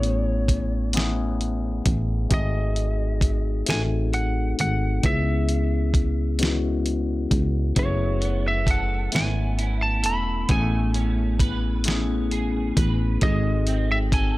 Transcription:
Already playing: fm bass A1, tine electric piano A3 B3 C#4 E4 G#4, lead electric guitar C#5
0.03 closed hi-hat
0.48 kick, closed hi-hat
0.93 tine electric piano A3 B3 C#4 E4 G#4, snare, closed hi-hat
1.41 closed hi-hat
1.86 fm bass A1, kick, closed hi-hat
2.30 fm bass G#1, tine electric piano A3 C4 D#4 F#4 G#4, kick, closed hi-hat
2.34 lead electric guitar D#5
2.76 closed hi-hat
3.21 kick, closed hi-hat
3.66 fm bass A1, tine electric piano A3 C4 D#4 F#4 A4, lead electric guitar G#5, closed hi-hat
3.70 snare
4.13 lead electric guitar F#5, closed hi-hat
4.59 fm bass G#1, lead electric guitar F#5, closed hi-hat
5.03 fm bass C#2, tine electric piano G#3 B3 C#4 E4 G#4, lead electric guitar E5, kick, closed hi-hat
5.49 closed hi-hat
5.94 kick, closed hi-hat
6.39 tine electric piano G#3 B3 C#4 E4 F#4, closed hi-hat
6.43 snare
6.86 closed hi-hat
7.31 fm bass C#2, kick, closed hi-hat
7.76 fm bass F#1, clean electric guitar F#3, tine electric piano A3 B3 C#4 E4 G#4, lead electric guitar C#5, kick, closed hi-hat
8.21 clean electric guitar B3, closed hi-hat
8.48 lead electric guitar E5
8.66 clean electric guitar A4, kick, closed hi-hat
8.71 lead electric guitar F#5
9.12 fm bass G#1, tine electric piano A3 B3 C#4 E4 G#5, clean electric guitar B3, lead electric guitar G#5, closed hi-hat
9.16 snare
9.58 clean electric guitar E4, closed hi-hat
9.82 lead electric guitar A5
10.03 fm bass E1, clean electric guitar A4, lead electric guitar B5, closed hi-hat
10.48 fm bass A1, tine electric piano A3 B3 C#4 E4 G#4, clean electric guitar A3, lead electric guitar G#5, kick, closed hi-hat
10.94 clean electric guitar C#4, closed hi-hat
11.40 clean electric guitar B4, kick, closed hi-hat
11.84 tine electric piano A3 B3 C#4 E4 G#4, clean electric guitar C#4, snare, closed hi-hat
12.31 clean electric guitar G#4, closed hi-hat
12.77 fm bass A1, clean electric guitar B4, kick, closed hi-hat
13.21 fm bass G#1, clean electric guitar G#3, tine electric piano C4 D#4 F#4 G#4 A4, lead electric guitar D#5, kick, closed hi-hat
13.67 clean electric guitar C4, closed hi-hat
13.92 lead electric guitar E5
14.12 clean electric guitar A4, lead electric guitar G#5, kick, closed hi-hat

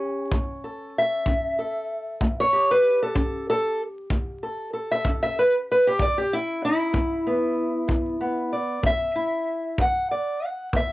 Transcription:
Already playing: steel-string acoustic guitar C#4 G4
0.31 steel-string acoustic guitar A3, kick
0.64 steel-string acoustic guitar A4
0.98 steel-string acoustic guitar E5
1.26 steel-string acoustic guitar C#4, kick
1.59 steel-string acoustic guitar A4
2.21 steel-string acoustic guitar A3, kick
2.40 steel-string acoustic guitar C#5
2.53 steel-string acoustic guitar G4
2.71 steel-string acoustic guitar B4
3.03 steel-string acoustic guitar A4
3.15 steel-string acoustic guitar C#4, kick
3.50 steel-string acoustic guitar A4
4.10 steel-string acoustic guitar A3, kick
4.43 steel-string acoustic guitar A4
4.73 steel-string acoustic guitar A4
4.92 steel-string acoustic guitar E5
5.05 steel-string acoustic guitar C#4, kick
5.23 steel-string acoustic guitar E5
5.39 steel-string acoustic guitar B4
5.71 steel-string acoustic guitar B4
5.87 steel-string acoustic guitar G4
5.99 steel-string acoustic guitar G#2 D5, kick
6.18 steel-string acoustic guitar G4
6.33 steel-string acoustic guitar E4
6.65 steel-string acoustic guitar E4
6.93 steel-string acoustic guitar B3, kick
7.27 steel-string acoustic guitar B3
7.88 steel-string acoustic guitar G#2, kick
8.21 steel-string acoustic guitar B3
8.53 steel-string acoustic guitar D5
8.83 steel-string acoustic guitar B3 E5, kick
9.16 steel-string acoustic guitar E4
9.78 steel-string acoustic guitar E3 F#5, kick
10.11 steel-string acoustic guitar D5
10.45 steel-string acoustic guitar F#5
10.73 steel-string acoustic guitar B3 E5, kick

